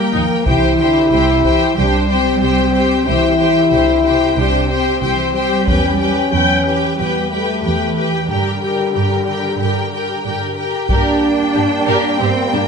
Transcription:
Already playing: G3 A#3 G4 A#4 G5
0.14 D#2 F3 D#4
0.46 C2 E3 E4 G4 C5 G5, taiko
0.78 D3 G4 C5 G5
1.11 C2 C3 G4 C5 G5
1.43 E3 G4 C5 G5, taiko
1.76 C2 G3 D4 G4 C5 G5
2.09 C4 G4 C5 G5
2.41 C2 G4 C5 G5
2.73 G4 C5 G5
3.05 C2 E3 E4 G4 C5 G5
3.39 G4 C5 G5
3.71 C2 D3 G4 C5 G5
4.04 C3 G4 C5 G5
4.37 C2 D4 G4 C5 G5
4.70 C4 G4 C5 G5
5.02 C2 E3 G4 C5 G5
5.35 G3 G4 C5 G5
5.67 E2 C#4 G4 B4 G5, taiko
5.99 G4 B4 G5
6.32 E2 F#3 B4 G5
6.65 E3 G4 B4 G5
6.98 E2 G3 B3 G4 B4 G5
7.30 A3 G4 B4 G5
7.63 E2 E3 G4 B4 G5
7.96 G4 B4 G5
8.29 G2 D3 G3 G4 A#4 G5
8.62 G4 A#4 G5
8.93 G2 G4 A#4 G5
9.26 G4 A#4 G5
9.59 G2 G4 A#4 G5
9.92 G4 G5
9.96 A#4
10.24 G2 G4 A#4 G5
10.56 G4 A#4 G5
10.89 G2 G3 A#3 D4 G4 A#4 G5, taiko
11.55 G2 D4 G4
11.87 G2 G4 A#4
12.20 G2 C4 G4
12.53 G2 A#3 D4 G4

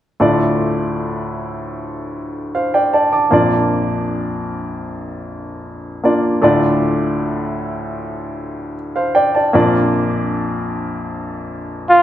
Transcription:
0.20 D2 A2 A3 D4 F4 D5
2.55 C5 F5
2.74 D5 G5
2.93 D5 A5
3.13 A5 D6
3.31 A#1 F2 A#3 D4 F4 D5
6.04 A#3 D4 F4 D5
6.42 D2 A2 A3 D4 F4 D5
8.96 C5 F5
9.15 D5 G5
9.35 D5 A5
9.53 A#1 F2 A#3 D4 F4 D5
11.90 F4

